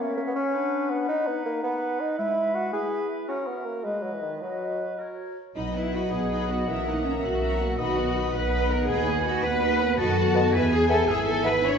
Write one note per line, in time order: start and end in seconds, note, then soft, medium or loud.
0.00 0.17 A#3 medium
0.00 0.56 C#4 medium
0.00 0.55 C#5 medium
0.00 0.54 E5 medium
0.17 0.22 A#3 medium
0.27 0.31 B3 medium
0.36 0.92 C#4 medium
0.54 1.09 D4 medium
0.54 1.08 B4 medium
0.54 1.08 F#5 medium
0.90 1.08 B3 medium
1.08 1.28 D#4 medium
1.08 2.15 D#4 medium
1.08 1.60 B4 medium
1.08 1.60 F#5 medium
1.27 1.45 B3 medium
1.45 1.63 A#3 medium
1.63 2.02 B3 medium
1.63 2.17 B4 medium
1.63 2.18 F#5 medium
2.00 2.18 D#4 medium
2.18 2.75 G#3 medium
2.18 2.56 E4 medium
2.18 2.72 B4 soft
2.18 2.73 E5 medium
2.55 2.72 F#4 medium
2.73 3.30 E4 soft
2.73 3.08 G#4 medium
2.73 3.30 B4 medium
2.73 3.28 E5 medium
3.28 3.48 C#4 medium
3.28 3.86 F#4 medium
3.28 3.84 A#4 soft
3.28 3.35 F#5 soft
3.47 3.66 B3 medium
3.57 3.63 E5 soft
3.65 3.85 A#3 medium
3.84 4.04 G#3 medium
3.84 4.25 G#3 soft
3.84 4.40 B4 soft
3.84 4.40 D#5 soft
4.03 4.14 F#3 soft
4.12 4.24 E3 soft
4.22 4.43 D#3 soft
4.41 4.99 F#3 soft
4.41 4.98 F#4 soft
4.41 5.00 B4 soft
4.41 4.97 D#5 soft
4.99 5.36 F#4 soft
4.99 5.37 A#4 soft
4.99 5.36 C#5 soft
5.55 6.05 B1 medium
5.55 6.64 F#3 medium
5.55 5.73 D#4 soft
5.55 6.69 D#4 medium
5.55 5.63 D#4 medium
5.55 6.64 B4 soft
5.55 5.73 D#5 soft
5.55 6.69 D#5 soft
5.55 7.74 F#5 medium
5.55 5.73 B5 soft
5.74 5.93 B3 soft
5.74 5.93 E4 medium
5.74 5.93 B4 soft
5.74 5.93 F#5 soft
5.93 6.12 D#4 soft
5.93 6.12 F#4 medium
5.93 6.12 D#5 soft
5.93 6.12 B5 soft
6.11 6.61 B1 medium
6.11 6.30 B3 soft
6.11 6.48 G#4 medium
6.11 6.30 B4 soft
6.11 7.19 D#5 medium
6.11 6.31 F#5 soft
6.30 6.48 D#4 soft
6.30 6.48 D#5 soft
6.30 6.48 B5 soft
6.48 6.68 B3 soft
6.48 6.68 F#4 medium
6.48 6.67 B4 soft
6.48 6.68 F#5 soft
6.67 7.16 B1 medium
6.67 7.79 E3 medium
6.67 7.78 A#3 soft
6.67 6.85 C#4 soft
6.67 6.86 E4 medium
6.67 7.76 A#4 medium
6.67 6.84 E5 soft
6.67 7.78 E5 medium
6.67 6.85 A#5 soft
6.85 7.05 A#3 soft
6.85 7.05 D#4 medium
6.85 7.05 C#5 soft
6.85 7.04 F#5 soft
7.04 7.12 C#4 medium
7.04 7.23 C#4 soft
7.04 7.23 E5 soft
7.04 7.23 A#5 soft
7.22 7.72 B1 medium
7.22 7.42 A#3 soft
7.22 7.78 F#4 medium
7.22 7.41 C#5 soft
7.22 7.80 E5 medium
7.22 7.41 F#5 soft
7.41 7.59 C#4 soft
7.41 7.58 E5 soft
7.41 7.58 A#5 soft
7.59 7.79 A#3 soft
7.59 7.79 C#5 soft
7.59 7.78 F#5 soft
7.78 8.27 B1 medium
7.78 9.94 D#3 medium
7.78 9.94 B3 medium
7.78 7.96 D#4 medium
7.78 8.33 F#4 medium
7.78 9.98 B4 medium
7.78 8.34 D#5 medium
7.78 7.96 D#5 medium
7.78 9.94 D#5 medium
7.78 9.94 F#5 medium
7.78 7.96 B5 medium
7.97 8.15 B3 soft
7.97 8.16 B4 soft
7.97 8.15 F#5 medium
8.15 8.34 D#4 medium
8.15 8.34 D#5 medium
8.15 8.34 B5 medium
8.33 8.82 B1 medium
8.33 8.52 B3 medium
8.33 8.70 B4 medium
8.33 8.53 B4 medium
8.33 8.52 F#5 medium
8.33 8.88 F#5 medium
8.52 8.69 D#4 medium
8.52 8.69 D#5 medium
8.52 8.69 B5 medium
8.70 8.89 B3 medium
8.70 8.89 A#4 medium
8.70 8.89 B4 medium
8.70 8.88 F#5 medium
8.88 9.37 D#2 medium
8.88 9.06 D#4 medium
8.88 9.24 G#4 medium
8.88 9.06 D#5 medium
8.88 9.42 G#5 medium
8.88 9.05 B5 medium
9.06 9.25 B3 medium
9.06 9.25 B4 medium
9.06 9.25 F#5 medium
9.25 9.44 D#4 medium
9.25 9.43 F#4 medium
9.25 9.44 D#5 medium
9.25 9.44 B5 medium
9.43 9.92 D#2 medium
9.43 9.62 B3 medium
9.43 9.98 B4 loud
9.43 9.62 B4 medium
9.43 9.99 F#5 medium
9.43 9.62 F#5 medium
9.61 9.79 D#4 medium
9.61 9.79 D#5 medium
9.61 9.78 B5 medium
9.80 9.98 B3 medium
9.80 9.98 B4 medium
9.80 9.98 F#5 medium
9.97 10.49 F#2 medium
9.97 10.52 D#3 medium
9.97 11.59 B3 medium
9.97 10.52 F#4 loud
9.97 10.52 A4 medium
9.97 10.15 D#5 medium
9.97 10.52 A5 medium
9.97 10.49 A5 medium
10.16 10.34 F#5 medium
10.34 10.41 B3 medium
10.34 10.41 D#5 medium
10.34 10.53 A5 medium
10.34 10.44 A5 medium
10.52 11.06 E2 medium
10.52 11.78 E3 medium
10.52 11.08 G#4 medium
10.52 10.71 B4 loud
10.52 10.70 E5 medium
10.52 11.10 G#5 medium
10.52 11.62 G#5 medium
10.71 10.89 G#4 loud
10.71 10.90 G#5 medium
10.89 10.96 B3 medium
10.89 11.07 A4 loud
10.89 10.96 E5 medium
10.89 10.98 G#5 medium
10.89 11.07 B5 medium
11.08 11.78 G#1 medium
11.08 11.62 E4 medium
11.08 11.26 G#4 loud
11.08 11.25 E5 medium
11.08 11.78 E5 medium
11.26 11.44 A4 loud
11.26 11.44 G#5 medium
11.44 11.50 B3 medium
11.44 11.62 B4 loud
11.44 11.51 E5 medium
11.44 11.63 B5 medium
11.44 11.53 B5 medium
11.62 11.78 D4 medium
11.62 11.78 C#5 loud
11.62 11.78 E5 medium
11.62 11.78 B5 medium